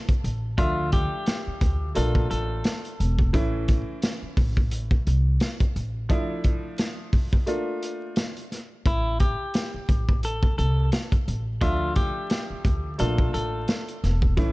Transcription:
Already playing: E3 A3 C#4 E4
0.09 kick, closed hi-hat
0.24 A1, closed hi-hat
0.57 D2 F3 A3 D4 F4 E5, kick, closed hi-hat
0.92 G4, kick, closed hi-hat
1.26 snare, closed hi-hat
1.47 muted upright bass stroke
1.61 D2, kick, closed hi-hat
1.95 A#1 A3 A#3 D4 F4 A4, closed hi-hat
2.15 kick
2.31 A1 A4, closed hi-hat
2.64 snare, closed hi-hat
2.85 closed hi-hat
3.00 E1, closed hi-hat
3.19 kick
3.33 A1 E3 A3 C#4 E4, kick, closed hi-hat
3.68 kick, closed hi-hat
4.02 snare, closed hi-hat
4.23 muted upright bass stroke
4.37 A1, kick, open hi-hat
4.57 kick
4.71 closed hi-hat
4.91 kick
5.07 C2, closed hi-hat
5.40 snare, closed hi-hat
5.60 kick, closed hi-hat
5.76 A1, closed hi-hat
6.09 F3 A3 D4 E4, kick, closed hi-hat
6.44 kick, closed hi-hat
6.78 snare, closed hi-hat
7.13 kick, open hi-hat
7.33 kick
7.46 A3 A#3 D4 F4, closed hi-hat
7.83 closed hi-hat
8.16 snare, closed hi-hat
8.37 closed hi-hat
8.52 snare, closed hi-hat
8.86 A1 E4, kick, closed hi-hat
9.20 G4, kick, closed hi-hat
9.54 snare, closed hi-hat
9.74 muted upright bass stroke
9.89 A1, kick, closed hi-hat
10.09 kick
10.23 A4, closed hi-hat
10.43 kick
10.58 C2 A4, closed hi-hat
10.92 snare, closed hi-hat
11.12 kick, closed hi-hat
11.28 A1, closed hi-hat
11.61 D2 F3 A3 D4 F4 E5, kick, closed hi-hat
11.96 G4, kick, closed hi-hat
12.30 snare, closed hi-hat
12.50 muted upright bass stroke
12.65 D2, kick, closed hi-hat
12.98 A#1 A3 A#3 D4 F4 A4, closed hi-hat
13.18 kick
13.34 A1 A4, closed hi-hat
13.68 snare, closed hi-hat
13.88 closed hi-hat
14.04 E1, snare, closed hi-hat
14.22 kick
14.37 E3 A3 C#4 E4, kick, closed hi-hat

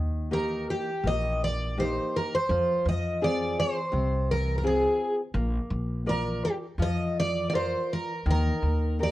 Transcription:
Already playing: D#2 D#3
0.31 A#3 D#4 G4 A#4
0.70 G4
1.03 A#1 A#3 D#5
1.44 D5
1.77 A#3 D#4 G4 C5
2.16 A#4
2.35 C5
2.49 F2 F3
2.85 F2 D#5
3.21 C4 F4 G#4 D5
3.60 C5
3.92 C2 C3
4.31 A#4
4.58 A#4
4.63 C4 F4 G#4
5.34 A#1 A#3
5.70 A#1
6.06 F4 A#4 D5
6.45 G4
6.78 F2 F3
6.83 D#5
7.20 D5
7.50 F4 A#4 D5
7.54 C5 D5
7.93 A#4
8.26 D#2 D#3
8.31 A#4
8.62 D#2
8.99 D#4 G4 A#4
9.03 D5

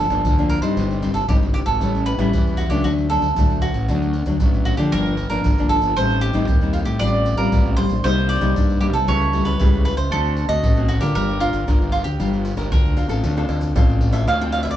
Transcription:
Already playing: G2 A4
0.10 G1 F3 A#3 D4, pandeiro, shaker, surdo
0.24 D2 D3, pandeiro, shaker, surdo
0.38 F3 A#3 D4, pandeiro, shaker
0.49 A#4, pandeiro
0.62 G2 G3 C4 D#4 C5, pandeiro, shaker, surdo
0.77 G1 C3, pandeiro, shaker, surdo
0.91 pandeiro, shaker
1.02 G3 C4 D#4, pandeiro, shaker, surdo
1.14 G1 A4, pandeiro, shaker
1.28 G1 C3 G3 C4 D#4 G4, pandeiro, shaker, surdo
1.42 pandeiro, shaker
1.54 G4, pandeiro, shaker
1.66 G#1 A4, pandeiro, shaker, surdo
1.80 A1 A2 G3 C#4 E4, pandeiro, shaker, surdo
1.95 pandeiro, shaker
2.06 B4, pandeiro, shaker
2.18 A1 G3 C#4 E4, pandeiro, shaker, surdo
2.32 E2 E3, pandeiro, shaker, surdo
2.47 pandeiro, shaker
2.57 F#4, pandeiro, shaker, surdo
2.70 C#2 F#3 A3 D4 G4, pandeiro, shaker, surdo
2.84 D2 D3 F#4, pandeiro, shaker, surdo
2.98 pandeiro, shaker
3.10 F#3 A3 D4 A4, pandeiro, shaker, surdo
3.22 D2, pandeiro, shaker
3.36 D2 A2 F#3 A3 D4, pandeiro, shaker, surdo
3.50 pandeiro, shaker
3.62 F#4, pandeiro, shaker
3.74 A1, pandeiro, shaker, surdo
3.89 D2 D3 F#3 A3 D4, pandeiro, shaker, surdo
4.02 pandeiro, shaker
4.13 pandeiro, shaker
4.26 D2 F#3 A3 D4, pandeiro, shaker, surdo
4.40 A1 A2 F#3 A3 D4, pandeiro, shaker, surdo
4.54 pandeiro, shaker
4.65 F#4, pandeiro, surdo
4.77 D3 F3 A#3 D4 G4, pandeiro, shaker, surdo
4.92 G1 G2 A#4, pandeiro, shaker, surdo
5.06 pandeiro, shaker
5.17 pandeiro, shaker, surdo
5.30 G1 F3 A#3 D4 A#4, pandeiro, shaker
5.44 G1 D3, pandeiro, shaker, surdo
5.58 F3 A#3 D4, pandeiro, shaker
5.69 A4, pandeiro, shaker
5.82 G1, pandeiro, shaker, surdo
5.96 A1 A2 G3 C4 D#4 C5, pandeiro, shaker, surdo
6.10 pandeiro, shaker
6.21 G4, pandeiro, shaker
6.33 A1 G3 C4 D#4, pandeiro, shaker, surdo
6.48 D#2 A2, pandeiro, shaker, surdo
6.61 G3 C4 D#4, pandeiro, shaker
6.73 F4, pandeiro, shaker, surdo
6.85 A2 G4, pandeiro, shaker, surdo
6.99 A1 A2 G3 C4 F4 D5, pandeiro, shaker, surdo
7.14 pandeiro, shaker
7.26 pandeiro, shaker, surdo
7.37 A1 G3 C4 F4 A#4, pandeiro, shaker
7.52 A1 A2, pandeiro, shaker, surdo
7.66 pandeiro, shaker
7.77 G3 C4 F4 C5, pandeiro, shaker
7.89 A#1, pandeiro, shaker, surdo
8.04 C2 C3 G3 A#3 D#4 C5, pandeiro, shaker, surdo
8.18 pandeiro, shaker
8.29 D5, pandeiro, shaker
8.41 C2 G3 A#3 D#4, pandeiro, shaker, surdo
8.56 G2, pandeiro, shaker, surdo
8.70 pandeiro, shaker
8.81 G3 A#3 D#4 G4, pandeiro
8.93 C3 A4, pandeiro, shaker, surdo
9.07 C#2 C#3 G3 A3 E4 C#5, pandeiro, shaker, surdo
9.22 pandeiro, shaker
9.32 G3 A3 E4, pandeiro, surdo
9.45 C#2 B4, pandeiro, shaker
9.59 C#2 C#3 G3 A3 E4, pandeiro, shaker, surdo
9.73 pandeiro, shaker
9.85 B4, pandeiro
9.97 C#2 C5, pandeiro, shaker, surdo
10.11 D2 D3 A3 C4 F#4 A4, pandeiro, shaker, surdo
10.25 pandeiro, shaker
10.37 pandeiro, shaker
10.48 D2 A3 C4 F#4 D#5, pandeiro, shaker, surdo
10.63 A1 A2, pandeiro, shaker, surdo
10.77 A3 C4 F#4, pandeiro, shaker
10.88 F#4, pandeiro, shaker, surdo
11.01 D3 D4 F4 G4 A#4, pandeiro, shaker, surdo
11.15 G1 G3 A#4, pandeiro, shaker, surdo
11.29 pandeiro, shaker
11.40 D4 F4 A#4, pandeiro, shaker, surdo
11.53 G1, pandeiro, shaker
11.67 G1 D3 D4 F4 A#4, pandeiro, shaker, surdo
11.81 pandeiro, shaker
11.92 F4, pandeiro, shaker
12.04 D2 G4, pandeiro, shaker, surdo
12.19 G1 G3 D4 F4 A#4, pandeiro, shaker, surdo
12.34 pandeiro, shaker
12.45 pandeiro, shaker
12.57 G1 D4 F4 A#4, pandeiro, shaker, surdo
12.71 D2 D3 A#4, pandeiro, shaker, surdo
12.85 pandeiro, shaker
12.96 D4 F4 A#4, pandeiro, shaker, surdo
13.09 A1 C4 F4 A4, pandeiro, shaker, surdo
13.24 D2 D3, pandeiro, shaker, surdo
13.37 C4 F4 A4, pandeiro, tamborim, shaker
13.49 D2, pandeiro, tamborim
13.61 pandeiro, shaker, surdo
13.75 A1 A2 C4 F4 A4, pandeiro, tamborim, shaker, surdo
13.89 pandeiro, shaker
14.01 pandeiro, surdo
14.12 C4 F4 A4 E5, pandeiro, tamborim, shaker, surdo
14.27 D2 D3 F5, pandeiro, tamborim, shaker, surdo
14.41 C4 F4 A4 G5, pandeiro, shaker
14.52 F5, pandeiro, tamborim, shaker
14.63 E5, pandeiro, tamborim, shaker, surdo
14.71 D5

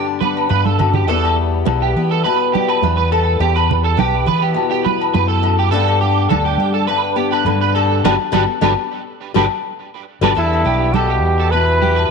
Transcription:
Already playing: G2 D3 B3 D4 G4
0.20 B3 B4, high conga
0.37 low agogo
0.49 G2 B4, high conga
0.65 A4, high conga
0.79 F#2, low conga, low agogo
0.94 G4, low conga
1.07 E2 E3 G3 B3 A4, muted conga
1.11 G4
1.25 low agogo
1.36 muted conga
1.65 B1 E3, muted clean electric guitar stroke, high conga, low agogo
1.82 G4
1.96 E3 B3
2.11 A4
2.24 B2 B4, muted conga, low agogo
2.53 G3 G4, high conga
2.69 B4, low agogo
2.82 E2 E3, high conga
2.97 B4
3.12 A4, muted conga, low agogo
3.40 E2 G4, muted conga
3.56 B4, low agogo
3.71 muted conga, low conga
3.84 A4
3.97 B1 E3 G4, high conga, low agogo
4.26 E3 B3 B4, low conga
4.42 G4
4.54 B2, muted conga, low agogo
4.71 G4
4.85 B4, high conga
5.01 low agogo
5.14 E2 F#2 B4, high conga
5.28 A4
5.43 F#2, muted conga, low agogo
5.59 G4
5.71 G2 D3 B3 D4 A4, muted conga
5.75 G4
5.88 low agogo
6.01 G4, muted conga
6.29 D2 D3 A4, high conga, low agogo
6.45 G4
6.58 G3 D4
6.74 A4
6.87 G2 B4, muted conga, low agogo
7.16 B3 G4
7.32 B4, low agogo
7.45 G2 D3, high conga
7.61 B4
7.75 G4 A4, muted conga, low agogo
8.04 G1 B2 D3 G3 D4 G4 B4, high conga, low agogo
8.32 G1 B2 D3 G3 D4 G4 B4, high conga, low agogo
8.61 G1 B2 D3 G3 D4 G4 B4, high conga, low agogo
9.34 G1 B2 D3 G3 D4 G4 B4, high conga, low agogo
10.21 G1 B2 D3 G3 D4 G4 B4, high conga, low agogo
10.35 E2 E3 G3 B3 E4 A4, muted conga
10.41 G2
10.53 low agogo
10.64 B1 G3 G4, muted conga
10.93 E3 G4 A4, high conga, low agogo
10.98 B2
11.10 G4
11.22 E2
11.39 A4
11.51 B2 B4, muted conga, low agogo
11.55 E3
11.82 G4, high conga
11.96 B4, low agogo

